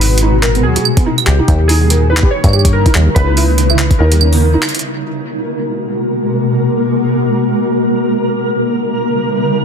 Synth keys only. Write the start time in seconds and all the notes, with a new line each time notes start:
Already playing: B4
0.42 A#4
0.63 G#4
1.26 G4
1.68 G#4
2.10 B4
2.31 C#5
2.73 A#4
3.15 B4
3.99 A#4